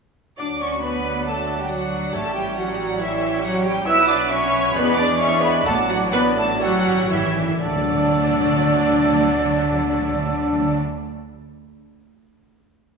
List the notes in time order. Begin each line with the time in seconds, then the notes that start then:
0.37 D2 F#3 D4 F#4 D5 D6
0.60 C#4 C#5 C#6
0.81 B3 B4 B5
1.25 A3 D4 F#4 A4 F#5 A5
1.59 G3 G4 G5
1.69 F#3 D4 F#4 F#5
2.12 A1 A2 G3 A3 C#4 G4 A4 C#5 E5 A5
2.35 G3 G4 G5
2.56 F#3 F#4 D5 F#5
2.99 E3 C#4 E4 G4 C#5 E5
3.41 F#3 F#4 F#5
3.63 G3 G4 G5
3.85 B1 F#3 B3 E4 F#4 B4 E5 E6
4.07 D4 D5 D6
4.29 C#4 C#5 E5 C#6
4.73 E2 G#3 B3 D4 G#4 B4 D5 B5
4.94 D4 D5 D6
5.18 C#4 C#5 E5 C#6
5.40 B3 B4 B5
5.64 A1 A2 F#3 A3 D4 F#4 A4 F#5 A5
5.87 F#3 F#4 F#5
6.11 B3 B4 D5 B5
6.35 A3 A4 A5
6.59 A2 F#3 G3 C#4 F#4 G4 A4 C#5 F#5
6.70 A2
6.79 A2
6.88 A2
7.03 A2
7.08 A2 E3 C#4 E4 G4 C#5 E5
7.13 E5
7.20 A2
7.29 A2
7.38 A2
7.47 A2
7.61 D2 D3 F#3 A3 D4 A4 D5
7.68 D3
7.75 D3
7.81 D3
7.88 D3
7.95 D3
8.01 D3
8.07 D3
8.14 D3
8.21 D3
8.27 D3
8.33 D3
8.40 D3
8.47 D3
8.53 D3
8.60 D3
8.67 D3
8.72 D3
8.79 D3
8.86 D3
8.93 D3
9.00 D3
9.06 D3
9.13 D3
9.19 D3
9.26 D3
9.39 D3
9.46 D3
9.52 D3
9.59 D3
9.65 D3
9.72 D3
9.79 D3
9.86 D3
9.93 D3
9.99 D3
10.05 D3
10.13 D3
10.19 D3
10.26 D3
10.33 D3
10.39 D3
10.46 D3
10.53 D3
10.59 D3
10.65 D3
10.72 D3